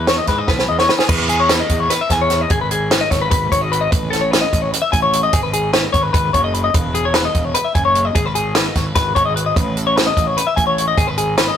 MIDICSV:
0, 0, Header, 1, 4, 480
1, 0, Start_track
1, 0, Key_signature, 4, "major"
1, 0, Tempo, 403769
1, 1292, Time_signature, 7, 3, 24, 8
1, 13754, End_track
2, 0, Start_track
2, 0, Title_t, "Clean electric guitar"
2, 0, Program_c, 0, 27
2, 100, Note_on_c, 0, 73, 76
2, 209, Note_off_c, 0, 73, 0
2, 214, Note_on_c, 0, 75, 66
2, 332, Note_off_c, 0, 75, 0
2, 337, Note_on_c, 0, 71, 69
2, 457, Note_off_c, 0, 71, 0
2, 457, Note_on_c, 0, 75, 59
2, 574, Note_off_c, 0, 75, 0
2, 576, Note_on_c, 0, 71, 71
2, 814, Note_off_c, 0, 71, 0
2, 817, Note_on_c, 0, 75, 63
2, 934, Note_off_c, 0, 75, 0
2, 943, Note_on_c, 0, 73, 63
2, 1057, Note_off_c, 0, 73, 0
2, 1057, Note_on_c, 0, 71, 66
2, 1168, Note_off_c, 0, 71, 0
2, 1173, Note_on_c, 0, 68, 59
2, 1289, Note_off_c, 0, 68, 0
2, 1294, Note_on_c, 0, 71, 80
2, 1533, Note_off_c, 0, 71, 0
2, 1538, Note_on_c, 0, 68, 79
2, 1656, Note_off_c, 0, 68, 0
2, 1662, Note_on_c, 0, 73, 73
2, 1778, Note_off_c, 0, 73, 0
2, 1779, Note_on_c, 0, 71, 86
2, 1896, Note_off_c, 0, 71, 0
2, 1899, Note_on_c, 0, 75, 70
2, 2141, Note_off_c, 0, 75, 0
2, 2141, Note_on_c, 0, 73, 68
2, 2258, Note_off_c, 0, 73, 0
2, 2261, Note_on_c, 0, 71, 83
2, 2378, Note_off_c, 0, 71, 0
2, 2392, Note_on_c, 0, 76, 68
2, 2511, Note_off_c, 0, 76, 0
2, 2511, Note_on_c, 0, 80, 76
2, 2623, Note_off_c, 0, 80, 0
2, 2633, Note_on_c, 0, 73, 70
2, 2868, Note_off_c, 0, 73, 0
2, 2868, Note_on_c, 0, 75, 69
2, 2982, Note_off_c, 0, 75, 0
2, 2985, Note_on_c, 0, 68, 86
2, 3100, Note_off_c, 0, 68, 0
2, 3105, Note_on_c, 0, 71, 69
2, 3220, Note_off_c, 0, 71, 0
2, 3225, Note_on_c, 0, 68, 77
2, 3467, Note_off_c, 0, 68, 0
2, 3467, Note_on_c, 0, 71, 78
2, 3578, Note_on_c, 0, 75, 72
2, 3581, Note_off_c, 0, 71, 0
2, 3692, Note_off_c, 0, 75, 0
2, 3692, Note_on_c, 0, 73, 77
2, 3813, Note_off_c, 0, 73, 0
2, 3822, Note_on_c, 0, 71, 74
2, 3917, Note_off_c, 0, 71, 0
2, 3932, Note_on_c, 0, 71, 79
2, 4173, Note_off_c, 0, 71, 0
2, 4182, Note_on_c, 0, 73, 77
2, 4299, Note_off_c, 0, 73, 0
2, 4299, Note_on_c, 0, 75, 69
2, 4416, Note_off_c, 0, 75, 0
2, 4419, Note_on_c, 0, 71, 75
2, 4528, Note_on_c, 0, 75, 70
2, 4536, Note_off_c, 0, 71, 0
2, 4650, Note_off_c, 0, 75, 0
2, 4650, Note_on_c, 0, 71, 87
2, 4879, Note_on_c, 0, 69, 82
2, 4892, Note_off_c, 0, 71, 0
2, 5005, Note_on_c, 0, 73, 75
2, 5007, Note_off_c, 0, 69, 0
2, 5128, Note_off_c, 0, 73, 0
2, 5128, Note_on_c, 0, 71, 84
2, 5242, Note_off_c, 0, 71, 0
2, 5247, Note_on_c, 0, 75, 70
2, 5492, Note_off_c, 0, 75, 0
2, 5492, Note_on_c, 0, 73, 67
2, 5604, Note_off_c, 0, 73, 0
2, 5604, Note_on_c, 0, 71, 79
2, 5727, Note_on_c, 0, 76, 71
2, 5728, Note_off_c, 0, 71, 0
2, 5846, Note_off_c, 0, 76, 0
2, 5851, Note_on_c, 0, 80, 74
2, 5968, Note_off_c, 0, 80, 0
2, 5973, Note_on_c, 0, 73, 68
2, 6213, Note_off_c, 0, 73, 0
2, 6221, Note_on_c, 0, 75, 71
2, 6337, Note_off_c, 0, 75, 0
2, 6340, Note_on_c, 0, 68, 83
2, 6451, Note_off_c, 0, 68, 0
2, 6456, Note_on_c, 0, 71, 69
2, 6574, Note_off_c, 0, 71, 0
2, 6580, Note_on_c, 0, 68, 81
2, 6810, Note_off_c, 0, 68, 0
2, 6814, Note_on_c, 0, 71, 84
2, 6925, Note_on_c, 0, 75, 71
2, 6933, Note_off_c, 0, 71, 0
2, 7040, Note_off_c, 0, 75, 0
2, 7045, Note_on_c, 0, 73, 76
2, 7167, Note_off_c, 0, 73, 0
2, 7167, Note_on_c, 0, 71, 67
2, 7274, Note_off_c, 0, 71, 0
2, 7288, Note_on_c, 0, 71, 74
2, 7525, Note_off_c, 0, 71, 0
2, 7530, Note_on_c, 0, 73, 72
2, 7650, Note_off_c, 0, 73, 0
2, 7657, Note_on_c, 0, 75, 65
2, 7774, Note_off_c, 0, 75, 0
2, 7774, Note_on_c, 0, 71, 74
2, 7889, Note_off_c, 0, 71, 0
2, 7893, Note_on_c, 0, 75, 65
2, 8015, Note_off_c, 0, 75, 0
2, 8015, Note_on_c, 0, 71, 84
2, 8252, Note_off_c, 0, 71, 0
2, 8257, Note_on_c, 0, 68, 81
2, 8374, Note_off_c, 0, 68, 0
2, 8383, Note_on_c, 0, 73, 70
2, 8496, Note_off_c, 0, 73, 0
2, 8502, Note_on_c, 0, 71, 79
2, 8615, Note_off_c, 0, 71, 0
2, 8620, Note_on_c, 0, 75, 69
2, 8854, Note_off_c, 0, 75, 0
2, 8854, Note_on_c, 0, 73, 70
2, 8969, Note_on_c, 0, 71, 73
2, 8972, Note_off_c, 0, 73, 0
2, 9089, Note_off_c, 0, 71, 0
2, 9089, Note_on_c, 0, 76, 65
2, 9207, Note_off_c, 0, 76, 0
2, 9212, Note_on_c, 0, 80, 70
2, 9328, Note_off_c, 0, 80, 0
2, 9333, Note_on_c, 0, 73, 67
2, 9569, Note_off_c, 0, 73, 0
2, 9569, Note_on_c, 0, 75, 66
2, 9687, Note_on_c, 0, 68, 84
2, 9689, Note_off_c, 0, 75, 0
2, 9816, Note_off_c, 0, 68, 0
2, 9816, Note_on_c, 0, 71, 72
2, 9923, Note_off_c, 0, 71, 0
2, 9928, Note_on_c, 0, 68, 79
2, 10169, Note_off_c, 0, 68, 0
2, 10169, Note_on_c, 0, 71, 82
2, 10289, Note_off_c, 0, 71, 0
2, 10294, Note_on_c, 0, 75, 70
2, 10412, Note_off_c, 0, 75, 0
2, 10412, Note_on_c, 0, 73, 74
2, 10529, Note_off_c, 0, 73, 0
2, 10529, Note_on_c, 0, 71, 72
2, 10631, Note_off_c, 0, 71, 0
2, 10645, Note_on_c, 0, 71, 86
2, 10875, Note_off_c, 0, 71, 0
2, 10880, Note_on_c, 0, 73, 79
2, 10997, Note_off_c, 0, 73, 0
2, 11002, Note_on_c, 0, 75, 71
2, 11122, Note_off_c, 0, 75, 0
2, 11127, Note_on_c, 0, 71, 76
2, 11243, Note_off_c, 0, 71, 0
2, 11248, Note_on_c, 0, 75, 70
2, 11372, Note_off_c, 0, 75, 0
2, 11372, Note_on_c, 0, 71, 85
2, 11616, Note_off_c, 0, 71, 0
2, 11616, Note_on_c, 0, 69, 81
2, 11727, Note_off_c, 0, 69, 0
2, 11731, Note_on_c, 0, 73, 73
2, 11844, Note_off_c, 0, 73, 0
2, 11844, Note_on_c, 0, 71, 81
2, 11962, Note_off_c, 0, 71, 0
2, 11966, Note_on_c, 0, 75, 75
2, 12211, Note_off_c, 0, 75, 0
2, 12211, Note_on_c, 0, 73, 68
2, 12327, Note_on_c, 0, 71, 82
2, 12328, Note_off_c, 0, 73, 0
2, 12444, Note_on_c, 0, 76, 67
2, 12446, Note_off_c, 0, 71, 0
2, 12554, Note_off_c, 0, 76, 0
2, 12559, Note_on_c, 0, 80, 77
2, 12677, Note_off_c, 0, 80, 0
2, 12682, Note_on_c, 0, 73, 69
2, 12923, Note_off_c, 0, 73, 0
2, 12930, Note_on_c, 0, 75, 69
2, 13047, Note_off_c, 0, 75, 0
2, 13048, Note_on_c, 0, 68, 78
2, 13167, Note_off_c, 0, 68, 0
2, 13167, Note_on_c, 0, 71, 71
2, 13284, Note_off_c, 0, 71, 0
2, 13288, Note_on_c, 0, 68, 77
2, 13518, Note_off_c, 0, 68, 0
2, 13523, Note_on_c, 0, 71, 86
2, 13643, Note_off_c, 0, 71, 0
2, 13646, Note_on_c, 0, 75, 67
2, 13754, Note_off_c, 0, 75, 0
2, 13754, End_track
3, 0, Start_track
3, 0, Title_t, "Fingered electric bass"
3, 0, Program_c, 1, 33
3, 0, Note_on_c, 1, 40, 89
3, 221, Note_off_c, 1, 40, 0
3, 334, Note_on_c, 1, 44, 76
3, 537, Note_off_c, 1, 44, 0
3, 571, Note_on_c, 1, 35, 79
3, 776, Note_off_c, 1, 35, 0
3, 811, Note_on_c, 1, 40, 80
3, 1016, Note_off_c, 1, 40, 0
3, 1293, Note_on_c, 1, 40, 98
3, 1908, Note_off_c, 1, 40, 0
3, 2019, Note_on_c, 1, 40, 85
3, 2222, Note_off_c, 1, 40, 0
3, 2492, Note_on_c, 1, 40, 83
3, 2902, Note_off_c, 1, 40, 0
3, 2974, Note_on_c, 1, 32, 100
3, 3588, Note_off_c, 1, 32, 0
3, 3696, Note_on_c, 1, 32, 87
3, 3900, Note_off_c, 1, 32, 0
3, 3940, Note_on_c, 1, 32, 82
3, 4142, Note_off_c, 1, 32, 0
3, 4179, Note_on_c, 1, 32, 98
3, 4586, Note_off_c, 1, 32, 0
3, 4664, Note_on_c, 1, 33, 107
3, 5273, Note_off_c, 1, 33, 0
3, 5384, Note_on_c, 1, 33, 90
3, 5584, Note_off_c, 1, 33, 0
3, 5861, Note_on_c, 1, 33, 84
3, 6266, Note_off_c, 1, 33, 0
3, 6337, Note_on_c, 1, 32, 95
3, 6948, Note_off_c, 1, 32, 0
3, 7061, Note_on_c, 1, 32, 84
3, 7261, Note_off_c, 1, 32, 0
3, 7299, Note_on_c, 1, 32, 85
3, 7500, Note_off_c, 1, 32, 0
3, 7532, Note_on_c, 1, 30, 91
3, 7940, Note_off_c, 1, 30, 0
3, 8017, Note_on_c, 1, 28, 104
3, 8627, Note_off_c, 1, 28, 0
3, 8737, Note_on_c, 1, 28, 81
3, 8939, Note_off_c, 1, 28, 0
3, 9213, Note_on_c, 1, 30, 80
3, 9620, Note_off_c, 1, 30, 0
3, 9689, Note_on_c, 1, 32, 92
3, 10302, Note_off_c, 1, 32, 0
3, 10406, Note_on_c, 1, 32, 88
3, 10611, Note_off_c, 1, 32, 0
3, 10648, Note_on_c, 1, 32, 85
3, 10852, Note_off_c, 1, 32, 0
3, 10890, Note_on_c, 1, 32, 101
3, 11297, Note_off_c, 1, 32, 0
3, 11366, Note_on_c, 1, 33, 98
3, 11979, Note_off_c, 1, 33, 0
3, 12087, Note_on_c, 1, 33, 89
3, 12291, Note_off_c, 1, 33, 0
3, 12563, Note_on_c, 1, 33, 79
3, 12973, Note_off_c, 1, 33, 0
3, 13045, Note_on_c, 1, 32, 92
3, 13658, Note_off_c, 1, 32, 0
3, 13754, End_track
4, 0, Start_track
4, 0, Title_t, "Drums"
4, 85, Note_on_c, 9, 42, 67
4, 88, Note_on_c, 9, 38, 92
4, 204, Note_off_c, 9, 42, 0
4, 206, Note_off_c, 9, 38, 0
4, 323, Note_on_c, 9, 42, 53
4, 326, Note_on_c, 9, 38, 30
4, 330, Note_on_c, 9, 36, 71
4, 442, Note_off_c, 9, 42, 0
4, 444, Note_off_c, 9, 38, 0
4, 448, Note_off_c, 9, 36, 0
4, 568, Note_on_c, 9, 38, 49
4, 572, Note_on_c, 9, 36, 88
4, 687, Note_off_c, 9, 38, 0
4, 691, Note_off_c, 9, 36, 0
4, 698, Note_on_c, 9, 38, 48
4, 816, Note_off_c, 9, 38, 0
4, 935, Note_on_c, 9, 38, 61
4, 1054, Note_off_c, 9, 38, 0
4, 1059, Note_on_c, 9, 38, 78
4, 1176, Note_off_c, 9, 38, 0
4, 1176, Note_on_c, 9, 38, 70
4, 1294, Note_on_c, 9, 49, 104
4, 1295, Note_off_c, 9, 38, 0
4, 1295, Note_on_c, 9, 36, 110
4, 1413, Note_off_c, 9, 49, 0
4, 1414, Note_off_c, 9, 36, 0
4, 1535, Note_on_c, 9, 42, 66
4, 1654, Note_off_c, 9, 42, 0
4, 1774, Note_on_c, 9, 42, 92
4, 1776, Note_on_c, 9, 38, 103
4, 1893, Note_off_c, 9, 42, 0
4, 1895, Note_off_c, 9, 38, 0
4, 2014, Note_on_c, 9, 42, 69
4, 2018, Note_on_c, 9, 36, 73
4, 2133, Note_off_c, 9, 42, 0
4, 2136, Note_off_c, 9, 36, 0
4, 2261, Note_on_c, 9, 42, 94
4, 2264, Note_on_c, 9, 38, 33
4, 2380, Note_off_c, 9, 42, 0
4, 2383, Note_off_c, 9, 38, 0
4, 2498, Note_on_c, 9, 36, 73
4, 2498, Note_on_c, 9, 42, 69
4, 2500, Note_on_c, 9, 38, 34
4, 2616, Note_off_c, 9, 36, 0
4, 2617, Note_off_c, 9, 42, 0
4, 2619, Note_off_c, 9, 38, 0
4, 2732, Note_on_c, 9, 42, 63
4, 2735, Note_on_c, 9, 38, 33
4, 2851, Note_off_c, 9, 42, 0
4, 2853, Note_off_c, 9, 38, 0
4, 2969, Note_on_c, 9, 42, 88
4, 2977, Note_on_c, 9, 36, 101
4, 3088, Note_off_c, 9, 42, 0
4, 3096, Note_off_c, 9, 36, 0
4, 3219, Note_on_c, 9, 42, 68
4, 3338, Note_off_c, 9, 42, 0
4, 3458, Note_on_c, 9, 42, 88
4, 3461, Note_on_c, 9, 38, 111
4, 3577, Note_off_c, 9, 42, 0
4, 3579, Note_off_c, 9, 38, 0
4, 3700, Note_on_c, 9, 36, 75
4, 3703, Note_on_c, 9, 42, 64
4, 3706, Note_on_c, 9, 38, 35
4, 3819, Note_off_c, 9, 36, 0
4, 3822, Note_off_c, 9, 42, 0
4, 3825, Note_off_c, 9, 38, 0
4, 3938, Note_on_c, 9, 42, 92
4, 3940, Note_on_c, 9, 36, 109
4, 4057, Note_off_c, 9, 42, 0
4, 4059, Note_off_c, 9, 36, 0
4, 4182, Note_on_c, 9, 36, 73
4, 4186, Note_on_c, 9, 42, 67
4, 4301, Note_off_c, 9, 36, 0
4, 4305, Note_off_c, 9, 42, 0
4, 4429, Note_on_c, 9, 42, 71
4, 4548, Note_off_c, 9, 42, 0
4, 4662, Note_on_c, 9, 36, 106
4, 4662, Note_on_c, 9, 42, 91
4, 4781, Note_off_c, 9, 36, 0
4, 4781, Note_off_c, 9, 42, 0
4, 4908, Note_on_c, 9, 42, 73
4, 4910, Note_on_c, 9, 38, 34
4, 5026, Note_off_c, 9, 42, 0
4, 5029, Note_off_c, 9, 38, 0
4, 5150, Note_on_c, 9, 42, 93
4, 5152, Note_on_c, 9, 38, 101
4, 5268, Note_off_c, 9, 42, 0
4, 5271, Note_off_c, 9, 38, 0
4, 5384, Note_on_c, 9, 36, 75
4, 5386, Note_on_c, 9, 42, 69
4, 5503, Note_off_c, 9, 36, 0
4, 5505, Note_off_c, 9, 42, 0
4, 5628, Note_on_c, 9, 42, 99
4, 5747, Note_off_c, 9, 42, 0
4, 5861, Note_on_c, 9, 36, 81
4, 5864, Note_on_c, 9, 42, 75
4, 5980, Note_off_c, 9, 36, 0
4, 5983, Note_off_c, 9, 42, 0
4, 6102, Note_on_c, 9, 42, 76
4, 6221, Note_off_c, 9, 42, 0
4, 6334, Note_on_c, 9, 42, 91
4, 6339, Note_on_c, 9, 36, 104
4, 6453, Note_off_c, 9, 42, 0
4, 6458, Note_off_c, 9, 36, 0
4, 6578, Note_on_c, 9, 42, 68
4, 6697, Note_off_c, 9, 42, 0
4, 6816, Note_on_c, 9, 42, 84
4, 6818, Note_on_c, 9, 38, 102
4, 6935, Note_off_c, 9, 42, 0
4, 6937, Note_off_c, 9, 38, 0
4, 7060, Note_on_c, 9, 36, 77
4, 7061, Note_on_c, 9, 42, 65
4, 7179, Note_off_c, 9, 36, 0
4, 7180, Note_off_c, 9, 42, 0
4, 7300, Note_on_c, 9, 36, 109
4, 7302, Note_on_c, 9, 42, 90
4, 7419, Note_off_c, 9, 36, 0
4, 7420, Note_off_c, 9, 42, 0
4, 7538, Note_on_c, 9, 42, 66
4, 7539, Note_on_c, 9, 36, 74
4, 7657, Note_off_c, 9, 42, 0
4, 7658, Note_off_c, 9, 36, 0
4, 7779, Note_on_c, 9, 42, 62
4, 7898, Note_off_c, 9, 42, 0
4, 8014, Note_on_c, 9, 42, 90
4, 8017, Note_on_c, 9, 36, 109
4, 8133, Note_off_c, 9, 42, 0
4, 8136, Note_off_c, 9, 36, 0
4, 8257, Note_on_c, 9, 42, 65
4, 8376, Note_off_c, 9, 42, 0
4, 8485, Note_on_c, 9, 42, 90
4, 8487, Note_on_c, 9, 38, 103
4, 8604, Note_off_c, 9, 42, 0
4, 8606, Note_off_c, 9, 38, 0
4, 8733, Note_on_c, 9, 42, 62
4, 8735, Note_on_c, 9, 36, 79
4, 8851, Note_off_c, 9, 42, 0
4, 8854, Note_off_c, 9, 36, 0
4, 8970, Note_on_c, 9, 42, 92
4, 9088, Note_off_c, 9, 42, 0
4, 9213, Note_on_c, 9, 42, 73
4, 9214, Note_on_c, 9, 36, 81
4, 9332, Note_off_c, 9, 42, 0
4, 9333, Note_off_c, 9, 36, 0
4, 9453, Note_on_c, 9, 42, 70
4, 9572, Note_off_c, 9, 42, 0
4, 9691, Note_on_c, 9, 42, 92
4, 9694, Note_on_c, 9, 36, 108
4, 9810, Note_off_c, 9, 42, 0
4, 9813, Note_off_c, 9, 36, 0
4, 9929, Note_on_c, 9, 42, 69
4, 10048, Note_off_c, 9, 42, 0
4, 10162, Note_on_c, 9, 42, 95
4, 10164, Note_on_c, 9, 38, 108
4, 10281, Note_off_c, 9, 42, 0
4, 10283, Note_off_c, 9, 38, 0
4, 10407, Note_on_c, 9, 42, 70
4, 10409, Note_on_c, 9, 38, 33
4, 10410, Note_on_c, 9, 36, 77
4, 10526, Note_off_c, 9, 42, 0
4, 10528, Note_off_c, 9, 38, 0
4, 10529, Note_off_c, 9, 36, 0
4, 10643, Note_on_c, 9, 42, 87
4, 10646, Note_on_c, 9, 38, 34
4, 10649, Note_on_c, 9, 36, 99
4, 10762, Note_off_c, 9, 42, 0
4, 10765, Note_off_c, 9, 38, 0
4, 10768, Note_off_c, 9, 36, 0
4, 10889, Note_on_c, 9, 42, 71
4, 10891, Note_on_c, 9, 36, 78
4, 11008, Note_off_c, 9, 42, 0
4, 11010, Note_off_c, 9, 36, 0
4, 11136, Note_on_c, 9, 42, 66
4, 11255, Note_off_c, 9, 42, 0
4, 11370, Note_on_c, 9, 36, 108
4, 11373, Note_on_c, 9, 42, 81
4, 11488, Note_off_c, 9, 36, 0
4, 11492, Note_off_c, 9, 42, 0
4, 11611, Note_on_c, 9, 42, 62
4, 11730, Note_off_c, 9, 42, 0
4, 11856, Note_on_c, 9, 42, 82
4, 11858, Note_on_c, 9, 38, 97
4, 11975, Note_off_c, 9, 42, 0
4, 11977, Note_off_c, 9, 38, 0
4, 12088, Note_on_c, 9, 36, 79
4, 12091, Note_on_c, 9, 42, 66
4, 12207, Note_off_c, 9, 36, 0
4, 12210, Note_off_c, 9, 42, 0
4, 12334, Note_on_c, 9, 42, 91
4, 12453, Note_off_c, 9, 42, 0
4, 12568, Note_on_c, 9, 36, 74
4, 12572, Note_on_c, 9, 42, 63
4, 12687, Note_off_c, 9, 36, 0
4, 12691, Note_off_c, 9, 42, 0
4, 12816, Note_on_c, 9, 42, 70
4, 12935, Note_off_c, 9, 42, 0
4, 13048, Note_on_c, 9, 36, 108
4, 13053, Note_on_c, 9, 42, 87
4, 13167, Note_off_c, 9, 36, 0
4, 13172, Note_off_c, 9, 42, 0
4, 13286, Note_on_c, 9, 42, 68
4, 13405, Note_off_c, 9, 42, 0
4, 13522, Note_on_c, 9, 42, 92
4, 13525, Note_on_c, 9, 38, 105
4, 13641, Note_off_c, 9, 42, 0
4, 13644, Note_off_c, 9, 38, 0
4, 13754, End_track
0, 0, End_of_file